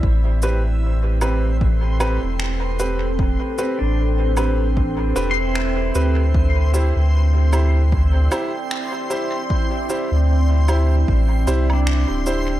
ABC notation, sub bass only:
X:1
M:4/4
L:1/16
Q:"Swing 16ths" 1/4=76
K:Am
V:1 name="Sub bass" clef=bass
A,,,8- A,,,3 E,,,4- E,,,- | E,,, z2 A,,,6- A,,, E,,,4 D,,2- | D,,3 D,,6- D,, z6 | z3 D,,4- D,, A,,,2 C,,3 D,,,3 |]